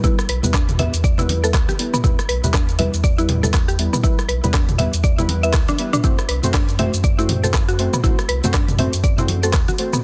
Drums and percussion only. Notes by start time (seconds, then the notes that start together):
0.04 kick, closed hi-hat, high conga, low conga, shaker
0.19 cross-stick, closed hi-hat, shaker
0.29 open hi-hat
0.43 closed hi-hat, high conga, low conga, shaker
0.54 kick, cross-stick, clap, closed hi-hat, shaker
0.69 closed hi-hat, mid tom, shaker
0.79 open hi-hat, high conga, low conga
0.94 open hi-hat, shaker
1.04 kick, closed hi-hat, shaker
1.18 closed hi-hat, low conga, shaker
1.29 open hi-hat, high conga
1.44 closed hi-hat, shaker
1.54 kick, cross-stick, clap, closed hi-hat, shaker
1.69 closed hi-hat, high conga, shaker
1.79 open hi-hat
1.94 mid tom, shaker
2.04 kick, closed hi-hat, high conga, low conga, shaker
2.19 cross-stick, closed hi-hat, shaker
2.29 open hi-hat
2.44 closed hi-hat, high conga, low conga, shaker
2.54 kick, cross-stick, clap, closed hi-hat, shaker
2.69 closed hi-hat, shaker
2.79 open hi-hat, high conga, low conga
2.94 closed hi-hat, shaker
3.04 kick, closed hi-hat, shaker
3.19 closed hi-hat, shaker
3.29 mid tom, open hi-hat, high conga
3.43 closed hi-hat, low conga, shaker
3.54 kick, cross-stick, clap, closed hi-hat, shaker
3.69 closed hi-hat, shaker
3.79 open hi-hat
3.94 mid tom, shaker
4.03 kick, closed hi-hat, high conga, low conga, shaker
4.19 cross-stick, closed hi-hat, shaker
4.29 open hi-hat
4.44 closed hi-hat, high conga, low conga, shaker
4.54 kick, cross-stick, clap, closed hi-hat, shaker
4.69 closed hi-hat, mid tom, shaker
4.79 open hi-hat, high conga, low conga
4.93 open hi-hat, shaker
5.04 kick, closed hi-hat, shaker
5.19 closed hi-hat, low conga, shaker
5.29 open hi-hat, high conga
5.43 closed hi-hat, shaker
5.54 kick, cross-stick, clap, closed hi-hat, shaker
5.68 closed hi-hat, high conga, shaker
5.79 open hi-hat
5.93 mid tom, shaker
6.04 kick, closed hi-hat, high conga, low conga, shaker
6.19 cross-stick, closed hi-hat, shaker
6.29 open hi-hat
6.43 closed hi-hat, high conga, low conga, shaker
6.54 kick, cross-stick, clap, closed hi-hat, shaker
6.69 closed hi-hat, shaker
6.79 open hi-hat, high conga, low conga
6.94 closed hi-hat, shaker
7.04 kick, closed hi-hat, shaker
7.19 closed hi-hat, shaker
7.29 mid tom, open hi-hat, high conga
7.44 closed hi-hat, low conga, shaker
7.54 kick, cross-stick, clap, closed hi-hat, shaker
7.69 closed hi-hat, shaker
7.79 open hi-hat
7.93 mid tom, shaker
8.04 kick, closed hi-hat, high conga, low conga, shaker
8.19 cross-stick, closed hi-hat, shaker
8.29 open hi-hat
8.44 closed hi-hat, high conga, low conga, shaker
8.54 kick, cross-stick, clap, closed hi-hat, shaker
8.68 closed hi-hat, mid tom, shaker
8.79 open hi-hat, high conga, low conga
8.93 open hi-hat, shaker
9.04 kick, closed hi-hat, shaker
9.18 closed hi-hat, low conga, shaker
9.28 open hi-hat, high conga
9.43 closed hi-hat, shaker
9.53 kick, cross-stick, clap, closed hi-hat, shaker
9.68 closed hi-hat, high conga, shaker
9.78 open hi-hat
9.93 mid tom, shaker